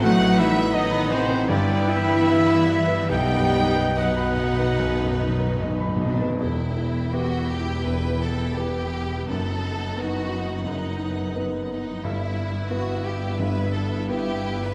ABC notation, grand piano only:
X:1
M:4/4
L:1/16
Q:1/4=84
K:Em
V:1 name="Grand piano"
A,, A, ^D B ^d b d B G,, G, E B e b e B | B,,, F,, ^D B ^d b d B B,,, F,, D B d b d B | [E,,,E,,]4 [B,GB]4 [E,,,E,,]4 [B,GB]4 | [F,,,F,,]4 [B,^DB]4 [F,,,F,,]4 [B,DB]4 |
[G,,,G,,]4 [B,EB]4 [G,,,G,,]4 [B,EB]4 |]